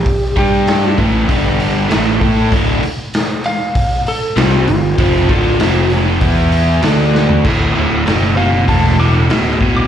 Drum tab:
CC |----------------|----------------|----------------|x---------------|
HH |o-o-o-o-o-o-o-o-|o-o-o-o-o-o-o-o-|o-o-o-o-o-o-o---|----o---o---o---|
SD |----o-------o---|----o-------o---|----o-------o-o-|----o-------o---|
FT |----------------|----------------|---------------o|----------------|
BD |o-o---o-o-----o-|o-------o-------|o-o-----o-------|o-------o-----o-|